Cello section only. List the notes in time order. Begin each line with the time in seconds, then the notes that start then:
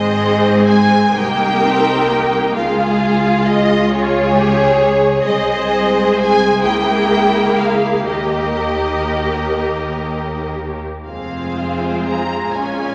Already playing: G#2
1.15 C2
2.55 C#2
5.27 C2
6.63 C#2
8.07 D#2
11.07 F2
12.54 A#2